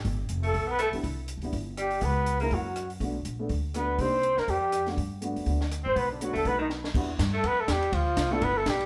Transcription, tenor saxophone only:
X:1
M:4/4
L:1/8
Q:"Swing" 1/4=244
K:G
V:1 name="Tenor saxophone"
z3 A,2 B, A, z | z6 G,2 | B,3 _B, F,3 z | z6 B,2 |
C3 _B, G,3 z | z6 z C | B, D, F, A, B, ^D, z2 | [K:Em] z3 A, B, A, G,2 |
=F,3 A, B, A, G,2 |]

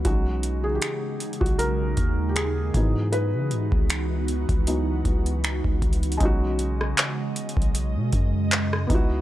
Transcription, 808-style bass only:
X:1
M:4/4
L:1/16
Q:"Swing 16ths" 1/4=78
K:B
V:1 name="808-style bass" clef=bass
B,,,4 z3 B,,,3 D,,4 G,,2- | G,, C, G,, C,,4 C,,3 C,,3 C,,3 | B,,,4 z3 B,,,2 B,, F,,4 C,,2 |]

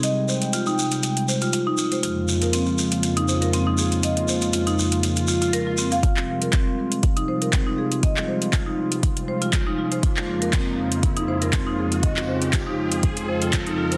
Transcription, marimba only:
X:1
M:4/4
L:1/16
Q:"Swing 16ths" 1/4=120
K:Fm
V:1 name="Marimba"
e z c z F E z4 c F F E F c | F z2 B C z4 E c B C E A z | e z c z F E z4 F F B F C f | F z2 B C z4 E c B C E A z |
e z c z F E z4 c F F E F c | F z2 B C z4 E c B C E A z | e z c z F E z4 c F F E F c |]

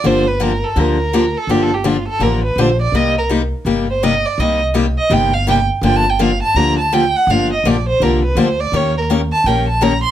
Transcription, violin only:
X:1
M:4/4
L:1/8
Q:"Swing" 1/4=166
K:Gm
V:1 name="Violin"
c =B _B A B3 A | (3G A G F A B =B c d | e B z3 c e d | e z2 e g f g z |
(3g a g f a b a g ^f | f e d c B =B c d | _d B z a g a b c' |]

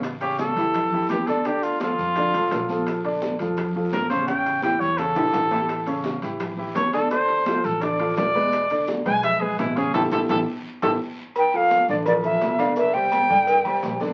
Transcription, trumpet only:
X:1
M:4/4
L:1/8
Q:1/4=170
K:Aphr
V:1 name="Trumpet"
z G A4 G A | G F F6 | z6 B c | g2 g ^c A4- |
A2 z4 ^c A | c3 A d2 d2- | d2 z ^g e ^G E G | A A A z2 A z2 |
[K:Dm] z8 | z8 |]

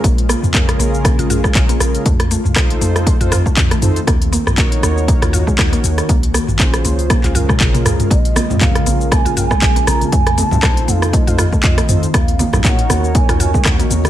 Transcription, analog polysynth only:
X:1
M:4/4
L:1/16
Q:"Swing 16ths" 1/4=119
K:Bbm
V:1 name="Analog polysynth"
z4 [DFAB]6- [DFAB] [DFAB]4- [DFAB] | z4 [EF=Ac]4- [EFAc] [EFAc] z4 [EFAc] z | z4 [EGBd]6- [EGBd] [EGBd]4- [EGBd] | z4 [DFAc]4- [DFAc] [DFAc] [DFAB]6 |
z4 [DFAB]6- [DFAB] [DFAB]4- [DFAB] | z4 [EF=Ac]4- [EFAc] [EFAc] z4 [EFAc] z | z4 [EGBd]6- [EGBd] [EGBd]4- [EGBd] |]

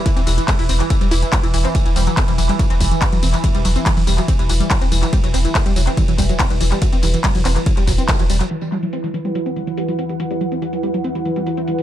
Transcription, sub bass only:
X:1
M:4/4
L:1/16
Q:1/4=142
K:Em
V:1 name="Sub bass" clef=bass
z E,,, E,,, z2 E,,, E,,, z2 E,,, E,,, z2 E,,, E,,, z | z E,,, E,,, z2 E,,, E,,, z2 E,,, E,,, z2 E,,, E,,, z | z E,,, E,,, z2 E,,, E,,, z2 E,,, E,,, z2 E,,, E,,, z | z E,,, E,,, z2 E,,, E,,, z2 E,,, E,,, z2 E,,, E,,, z |
z E,,, E,,, z2 E,,, E,,, z2 E,,, E,,, z2 E,,, E,,, z | z16 | z16 |]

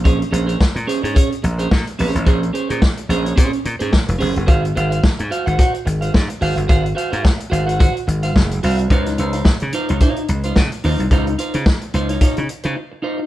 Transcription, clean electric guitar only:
X:1
M:4/4
L:1/16
Q:"Swing 16ths" 1/4=108
K:Bbm
V:1 name="Clean electric guitar"
[DAc] z [DAc] [DAc] z2 [DAc] [DAd] [DAd] z2 [DAc] z2 [DAc] z | [DAc] z [DAc] [DAc] z2 [DAc] [DAd] [DAd] z2 [DAc] z2 [DAc] z | [Gcf] z [Gcf] [Gcf] z2 [Gcf] [Gcg] [Gcg] z2 [Gcf] z2 [Gcf] z | [Gcf] z [Gcf] [Gcf] z2 [Gcf] [Gcg] [Gcg] z2 [Gcf] z2 [Gcf] z |
[EFc] z [EFc] [EFc] z2 [EFc] [EFd] [EFd] z2 [EFc] z2 [EFc] z | [EFc] z [EFc] [EFc] z2 [EFc] [EFd] [EFd] z2 [EFc] z2 [EFc] z |]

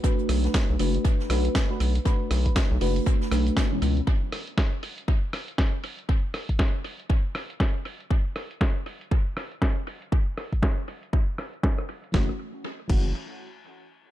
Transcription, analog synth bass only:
X:1
M:4/4
L:1/16
Q:"Swing 16ths" 1/4=119
K:F#m
V:1 name="Analog synth bass" clef=bass
z2 B,,, z2 B,,, F,,, z3 B,,, z3 B,,, z | z2 B,,, z2 B,,, F,,, z3 B,,, z3 C,, z | z16 | z16 |
z16 | z16 | F,,, z4 z F,,,2 z8 |]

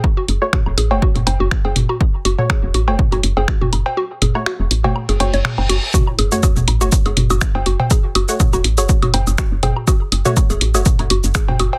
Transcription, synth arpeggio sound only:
X:1
M:4/4
L:1/16
Q:"Swing 16ths" 1/4=122
K:F#m
V:1 name="Synth arpeggio sound"
z F z2 F z G z F z2 F z G z F | z2 F z G z F z2 F z G z F z2 | F z G z F z2 F z G z c z2 F z | F z G z F z2 F z G z F z2 F z |
G z F z2 F z G z F z2 F z G z | F z2 F z G z F z2 F z G z F z |]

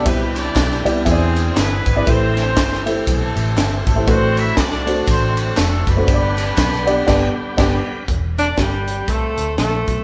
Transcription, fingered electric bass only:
X:1
M:4/4
L:1/8
Q:"Swing" 1/4=120
K:Ephr
V:1 name="Fingered electric bass" clef=bass
C,,2 B,,, C,, E,,2 G,,, ^G,,, | A,,,2 G,,,2 B,,, A,,, G,,, _A,,, | A,,,2 C,,2 A,,,2 F,,, ^F,,, | G,,,2 B,,,2 G,,, z G,,, z |
E,,,2 G,,,2 C,, D,, _B,,, =B,,, |]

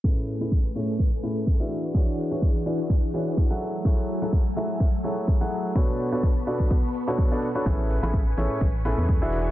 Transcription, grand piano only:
X:1
M:4/4
L:1/16
Q:"Swing 16ths" 1/4=126
K:A
V:1 name="Grand piano"
[A,,CEGAB]3 [A,,CEGAB] z2 [A,,CEGAc]2 z2 [A,,CEGAB]3 [E,DEFGe]3 | [E,DEFGc]3 [E,DEFGc] z2 [E,DEFGd]2 z2 [E,DEFGc]3 [F,EFGAf]3 | [F,EFGAc]3 [F,EFGAc] z2 [F,EFGAe]2 z2 [F,EFGAc]3 [F,EFGAf]3 | [B,,DFABc]3 [B,,DFABc] z2 [B,,DFABd]2 z3 [B,,DFABc]2 [B,,DFABd] z [DFABc] |
[A,,CEGAB]3 [A,,CEGAB] z2 [A,,CEGAc]2 z2 [A,,CEGAB]3 [E,DEFGe]3 |]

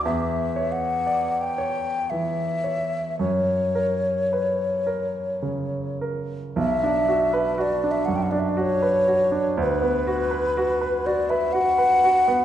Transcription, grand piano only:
X:1
M:3/4
L:1/16
Q:1/4=59
K:Bm
V:1 name="Grand piano"
E,,2 c2 d2 c2 E,2 c2 | F,,2 ^A2 B2 A2 C,2 A2 | B,,, D F B F D F,, D F B F D | D,, B, F B F B F B F B F B, |]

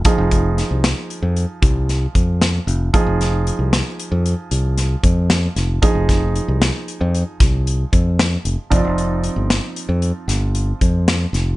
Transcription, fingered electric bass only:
X:1
M:11/8
L:1/16
Q:1/4=114
K:Fdor
V:1 name="Fingered electric bass" clef=bass
z F,,,4 C,,2 z2 F,,2 z C,,4 F,,4 F,,,2 | z F,,,4 C,,2 z2 F,,2 z C,,4 F,,4 F,,,2 | z F,,,4 C,,2 z2 F,,2 z C,,4 F,,4 F,,, z | F,,, F,,,4 G,,,2 z2 F,,2 z G,,,4 F,,4 F,,,2 |]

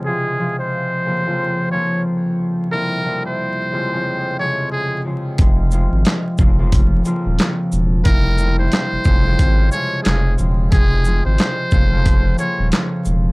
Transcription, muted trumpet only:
X:1
M:4/4
L:1/16
Q:"Swing 16ths" 1/4=90
K:Fm
V:1 name="Muted trumpet"
A3 c6- c d2 z4 | B3 c6- c d2 A2 z2 | z16 | B3 c6- c d2 A2 z2 |
A3 c6- c d2 z4 |]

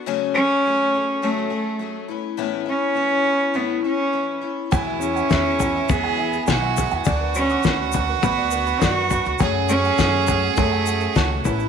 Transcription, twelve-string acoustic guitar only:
X:1
M:4/4
L:1/8
Q:1/4=103
K:F#m
V:1 name="Twelve-string acoustic guitar"
[F,,C,F,A,CG] [F,A,G] [F,A,CG] [F,A,CG] [F,,C,F,A,CG] [F,A,CG] [F,A,CG] [B,CE] | [A,,E,B,CE] [B,CE] [E,B,CE] [B,CE] [A,,E,B,CE] [B,CE] [E,B,CE] [B,CE] | [E,,B,,F,G,B,E] [F,G,B,E] [F,G,B,E] [F,G,B,E] [E,,B,,F,G,B,E] [F,G,B,E] [F,G,B,E] [F,G,B,E] | [D,B,DF] [B,DF] [D,B,DF] [B,DF] [D,B,DF] [B,DF] [D,B,DF] [B,DF] |
[F,,C,F,A,CG] [F,A,CG] [F,A,CG] [F,A,G] [F,,C,F,A,CG] [F,A,CG] [F,A,CG] [B,CE] |]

